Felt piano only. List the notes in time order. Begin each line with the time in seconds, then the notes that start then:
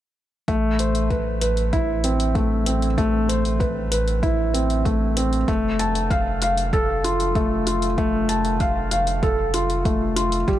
0.48 A3
0.80 C5
1.10 B4
1.41 B4
1.73 E4
2.04 C4
2.35 A3
2.66 C4
2.98 A3
3.29 C5
3.60 B4
3.91 B4
4.23 E4
4.54 C4
4.85 A3
5.17 C4
5.48 A3
5.79 A5
6.11 F5
6.42 F5
6.73 A4
7.04 F4
7.36 A3
7.67 F4
7.98 A3
8.29 A5
8.60 F5
8.92 F5
9.23 A4
9.54 F4
9.85 A3
10.16 F4
10.48 G3